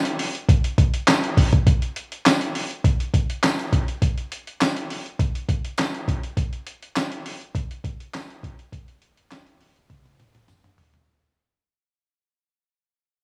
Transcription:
0.05 closed hi-hat medium
0.19 open hi-hat medium
0.35 closed hi-hat medium
0.49 kick loud
0.49 closed hi-hat loud
0.64 closed hi-hat medium
0.78 kick loud
0.78 closed hi-hat medium
0.94 closed hi-hat medium
1.07 snare loud
1.07 clap loud
1.07 closed hi-hat medium
1.07 tambourine medium
1.24 closed hi-hat medium
1.37 kick loud
1.37 open hi-hat medium
1.53 kick medium
1.53 closed hi-hat medium
1.67 kick loud
1.67 closed hi-hat medium
1.82 closed hi-hat soft
1.96 closed hi-hat medium
2.12 closed hi-hat medium
2.26 snare loud
2.26 clap medium
2.26 closed hi-hat medium
2.26 tambourine medium
2.41 closed hi-hat medium
2.55 open hi-hat medium
2.71 closed hi-hat medium
2.84 kick loud
2.84 closed hi-hat medium
3.00 closed hi-hat medium
3.14 kick medium
3.14 closed hi-hat medium
3.30 closed hi-hat medium
3.43 snare loud
3.43 clap medium
3.43 closed hi-hat medium
3.43 tambourine medium
3.59 closed hi-hat medium
3.73 kick loud
3.73 closed hi-hat medium
3.88 closed hi-hat medium
4.02 kick loud
4.02 closed hi-hat medium
4.18 closed hi-hat soft
4.32 closed hi-hat medium
4.47 closed hi-hat medium
4.61 snare loud
4.61 clap medium
4.61 closed hi-hat medium
4.61 tambourine medium
4.77 closed hi-hat medium
4.90 open hi-hat medium
5.06 closed hi-hat medium
5.19 kick loud
5.19 closed hi-hat loud
5.35 closed hi-hat medium
5.49 kick medium
5.49 closed hi-hat medium
5.65 closed hi-hat medium
5.78 snare loud
5.78 clap medium
5.78 closed hi-hat medium
5.78 tambourine medium
5.94 closed hi-hat soft
6.08 kick loud
6.08 closed hi-hat medium
6.23 closed hi-hat medium
6.37 kick loud
6.37 closed hi-hat medium
6.53 closed hi-hat soft
6.67 closed hi-hat medium
6.83 closed hi-hat medium
6.96 snare loud
6.96 clap medium
6.96 closed hi-hat medium
6.96 tambourine loud
7.12 closed hi-hat medium
7.26 open hi-hat medium
7.41 closed hi-hat medium
7.55 kick loud
7.55 closed hi-hat loud
7.71 closed hi-hat medium
7.84 kick medium
7.84 closed hi-hat medium
8.00 closed hi-hat medium
8.13 snare loud
8.13 clap medium
8.13 closed hi-hat medium
8.13 tambourine medium
8.30 closed hi-hat soft
8.43 kick loud
8.43 closed hi-hat medium
8.59 closed hi-hat medium
8.72 kick loud
8.72 closed hi-hat medium
8.88 closed hi-hat soft
9.02 closed hi-hat medium
9.17 closed hi-hat medium
9.31 snare loud
9.31 clap medium
9.31 closed hi-hat medium
9.31 tambourine medium
9.47 closed hi-hat medium
9.61 open hi-hat medium
9.76 closed hi-hat medium
9.90 kick loud
9.90 closed hi-hat medium
9.90 high tom medium
10.05 closed hi-hat medium
10.05 high tom medium
10.20 closed hi-hat medium
10.20 mid tom medium
10.35 closed hi-hat medium
10.35 mid tom medium
10.48 closed hi-hat medium
10.48 mid tom medium
10.48 tambourine medium
10.64 closed hi-hat medium
10.64 mid tom medium
10.78 floor tom loud
10.78 open hi-hat medium
10.94 closed hi-hat medium
10.94 floor tom medium

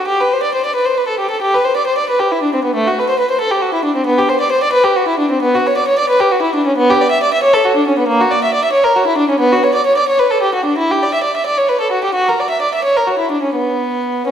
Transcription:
0.08 0.19 G4 medium
0.20 0.31 B4 soft
0.33 0.43 C5 soft
0.43 0.54 D5 soft
0.54 0.65 C5 soft
0.65 0.76 D5 soft
0.75 0.87 B4 medium
0.85 0.97 C5 soft
0.98 1.09 B4 soft
1.08 1.19 A4 soft
1.19 1.31 G4 soft
1.31 1.42 A4 soft
1.42 1.53 G4 medium
1.54 1.65 B4 soft
1.65 1.76 C5 soft
1.77 1.87 D5 soft
1.87 1.97 C5 medium
1.98 2.09 D5 soft
2.09 2.20 B4 medium
2.20 2.31 G4 soft
2.32 2.42 E4 soft
2.43 2.53 D4 soft
2.54 2.64 C4 soft
2.64 2.75 B3 soft
2.75 2.85 A3 medium
2.88 2.97 F#4 soft
2.99 3.09 B4 medium
3.09 3.19 C5 soft
3.19 3.30 B4 medium
3.31 3.41 C5 soft
3.41 3.51 A4 medium
3.51 3.62 G4 soft
3.62 3.73 F#4 soft
3.74 3.85 E4 soft
3.85 3.95 D4 soft
3.96 4.07 C4 soft
4.06 4.17 B3 medium
4.18 4.29 G4 medium
4.29 4.41 C5 soft
4.41 4.51 D5 medium
4.52 4.63 C5 medium
4.63 4.74 D5 medium
4.73 4.84 B4 medium
4.84 4.96 G4 soft
4.96 5.07 F#4 medium
5.08 5.19 E4 soft
5.19 5.31 D4 soft
5.31 5.42 C4 medium
5.42 5.54 B3 medium
5.55 5.66 F#4 medium
5.67 5.77 C#5 medium
5.77 5.88 D5 soft
5.88 5.99 C#5 medium
5.99 6.10 D5 medium
6.09 6.20 B4 medium
6.21 6.32 G4 medium
6.32 6.43 F#4 soft
6.42 6.54 E4 soft
6.55 6.66 D4 soft
6.66 6.77 C#4 soft
6.78 6.88 B3 medium
6.90 7.00 G4 medium
7.01 7.11 D5 medium
7.11 7.21 E5 medium
7.23 7.33 D5 medium
7.34 7.44 E5 medium
7.43 7.54 C#5 medium
7.54 7.65 A4 soft
7.65 7.77 F#4 medium
7.76 7.87 D4 soft
7.88 7.98 C#4 soft
7.99 8.09 B3 soft
8.08 8.20 A#3 medium
8.21 8.32 F#4 soft
8.31 8.42 D5 medium
8.44 8.54 E5 soft
8.54 8.64 D5 medium
8.65 8.75 E5 medium
8.73 8.85 C#5 medium
8.84 8.96 A#4 medium
8.96 9.07 F#4 medium
9.07 9.19 E4 medium
9.18 9.29 D4 medium
9.30 9.41 C#4 medium
9.40 9.51 B3 medium
9.53 9.64 F#4 medium
9.64 9.75 C#5 medium
9.74 9.85 D5 medium
9.86 9.97 C#5 medium
9.97 10.08 D5 medium
10.08 10.19 C#5 medium
10.19 10.30 B4 medium
10.31 10.42 A4 medium
10.42 10.54 G4 medium
10.55 10.66 F#4 soft
10.66 10.78 D4 soft
10.78 10.90 E4 medium
10.92 11.02 G4 medium
11.03 11.14 D5 medium
11.14 11.25 E5 soft
11.24 11.35 D5 soft
11.37 11.47 E5 medium
11.46 11.58 D5 medium
11.57 11.69 C#5 medium
11.69 11.80 B4 soft
11.81 11.92 A4 soft
11.92 12.03 F#4 soft
12.04 12.15 G4 soft
12.14 12.26 F#4 medium
12.28 12.39 A#4 soft
12.40 12.50 D5 soft
12.50 12.61 E5 soft
12.62 12.72 D5 soft
12.75 12.85 E5 soft
12.84 12.95 C#5 medium
12.97 13.08 A#4 soft
13.07 13.19 F#4 soft
13.19 13.30 E4 soft
13.32 13.43 D4 soft
13.42 13.54 C#4 soft
13.56 14.26 B3 soft
14.27 14.31 C#4 soft

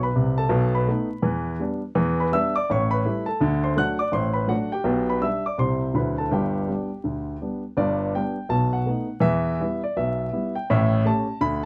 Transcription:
0.03 0.36 B4 medium
0.03 0.38 B5 medium
0.16 0.44 C2 medium
0.16 0.44 C3 medium
0.38 0.72 A4 medium
0.38 0.74 A5 medium
0.49 0.81 B1 medium
0.49 0.81 B2 medium
0.75 1.43 B4 medium
0.75 1.47 B5 medium
0.88 1.08 A3 medium
0.88 1.08 B3 soft
0.88 1.08 D#4 soft
1.22 1.54 E2 medium
1.22 1.54 E3 medium
1.60 1.80 G3 soft
1.60 1.80 B3 soft
1.60 1.80 D4 soft
1.95 2.26 E2 medium
1.95 2.26 E3 medium
2.20 2.33 B4 medium
2.20 2.33 B5 medium
2.32 2.52 G3 soft
2.32 2.52 B3 medium
2.32 2.53 D4 medium
2.32 2.54 E5 medium
2.32 2.55 E6 loud
2.56 2.69 D5 medium
2.56 2.69 D6 loud
2.70 3.00 A1 medium
2.70 3.01 A2 medium
2.70 2.91 C#5 medium
2.70 2.93 C#6 medium
2.91 3.26 B4 medium
2.91 3.27 B5 medium
3.05 3.25 G3 soft
3.05 3.25 A3 soft
3.05 3.25 E4 medium
3.26 3.41 A4 medium
3.26 3.40 A5 medium
3.40 3.72 D2 medium
3.40 3.72 D3 medium
3.64 3.77 C5 medium
3.64 3.77 C6 medium
3.76 3.97 F#3 soft
3.76 3.97 A3 medium
3.76 3.97 D4 soft
3.76 3.99 F#5 medium
3.76 4.00 F#6 loud
3.99 4.13 D5 medium
3.99 4.13 D6 medium
4.12 4.44 A1 medium
4.12 4.44 A2 medium
4.12 4.35 C5 medium
4.12 4.36 C6 medium
4.33 4.48 B4 medium
4.33 4.49 B5 medium
4.48 4.68 F#3 soft
4.48 4.69 A3 soft
4.48 4.69 D4 soft
4.48 4.71 F#4 medium
4.48 4.72 F#5 medium
4.72 5.07 G4 medium
4.72 5.09 G5 medium
4.84 5.16 B1 medium
4.84 5.17 B2 medium
5.10 5.22 B4 medium
5.10 5.23 B5 medium
5.21 5.42 G3 soft
5.21 5.42 D4 soft
5.21 5.44 E5 medium
5.21 5.45 E6 medium
5.46 5.59 D5 soft
5.46 5.60 D6 medium
5.58 5.89 C2 medium
5.58 5.90 C3 medium
5.58 5.79 G3 soft
5.58 5.79 C4 soft
5.58 5.80 E4 soft
5.58 5.93 C5 medium
5.58 5.96 C6 medium
5.94 6.26 D2 medium
5.94 6.26 D3 medium
5.94 6.14 F#3 soft
5.94 6.16 C4 soft
5.94 6.16 E4 soft
5.94 6.17 B4 soft
5.94 6.18 B5 medium
6.18 6.32 A4 medium
6.18 6.32 A5 medium
6.31 6.63 G1 medium
6.31 6.62 G2 medium
6.31 7.61 G4 medium
6.31 7.64 G5 medium
6.68 6.88 G3 soft
6.68 6.88 B3 soft
6.68 6.89 D4 soft
7.04 7.36 D2 soft
7.04 7.35 D3 medium
7.42 7.62 G3 soft
7.42 7.62 B3 soft
7.42 7.62 D4 soft
7.77 8.08 G1 medium
7.77 8.09 G2 medium
7.77 8.14 D5 medium
8.15 8.36 G3 soft
8.15 8.35 B3 soft
8.15 8.36 D4 soft
8.15 8.51 G5 medium
8.49 8.81 B1 medium
8.49 8.81 B2 medium
8.49 8.73 A5 medium
8.73 9.23 F#5 medium
8.86 9.06 A3 soft
8.86 9.07 B3 soft
8.86 9.08 D#4 soft
9.20 9.53 E2 medium
9.20 9.52 E3 medium
9.20 9.81 E5 loud
9.60 9.80 G3 soft
9.60 9.81 B3 soft
9.60 9.81 E4 medium
9.84 9.97 D5 medium
9.97 10.27 B1 medium
9.97 10.27 B2 medium
9.97 10.55 E5 medium
10.33 10.53 G3 soft
10.33 10.53 B3 soft
10.33 10.53 E4 soft
10.55 10.69 G5 medium
10.70 11.00 A1 medium
10.70 11.00 A2 loud
10.70 11.06 E5 loud
11.05 11.25 A3 soft
11.05 11.26 C#4 medium
11.05 11.27 G4 soft
11.05 11.42 A5 medium
11.41 11.65 D2 medium
11.41 11.65 D3 medium
11.41 11.64 B5 loud

